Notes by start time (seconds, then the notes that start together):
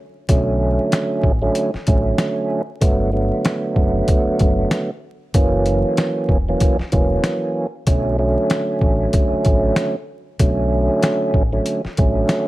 0.29 B1 D3 F#3 A3 C#4, kick, closed hi-hat
0.92 snare, closed hi-hat
1.23 A1, kick
1.42 D3 F#3 A3 C#4
1.55 closed hi-hat
1.74 muted fingered electric bass stroke, snare
1.87 A1 D3 F#3 A3 C#4, kick, closed hi-hat
2.18 snare, closed hi-hat
2.81 G1 D3 F#3 A3 B3, kick, closed hi-hat
3.13 D3 F#3 A3 B3
3.45 snare, closed hi-hat
3.76 F#1, kick
4.08 kick, closed hi-hat
4.28 muted fingered electric bass stroke
4.39 F#1, kick, closed hi-hat
4.71 snare, closed hi-hat
5.34 F#1 E3 F#3 A#3 C#4, kick, closed hi-hat
5.66 closed hi-hat
5.97 snare, closed hi-hat
6.29 E1, kick
6.48 E3 F#3 A#3 C#4
6.60 kick, closed hi-hat
6.79 muted fingered electric bass stroke, snare
6.92 E1 E3 F#3 A#3 C#4, kick, closed hi-hat
7.24 snare, closed hi-hat
7.87 B1 D3 F#3 A3 C#4, kick, closed hi-hat
8.18 D3 F#3 A3 C#4
8.50 snare, closed hi-hat
8.81 A1, kick
9.13 kick, closed hi-hat
9.33 muted fingered electric bass stroke
9.45 A1, kick, closed hi-hat
9.76 snare, closed hi-hat
10.39 B1 D3 F#3 A3 C#4, kick, closed hi-hat
11.03 snare, closed hi-hat
11.34 A1, kick
11.52 D3 F#3 A3 C#4
11.66 closed hi-hat
11.85 muted fingered electric bass stroke, snare
11.97 A1 D3 F#3 A3 C#4, kick, closed hi-hat
12.29 snare, closed hi-hat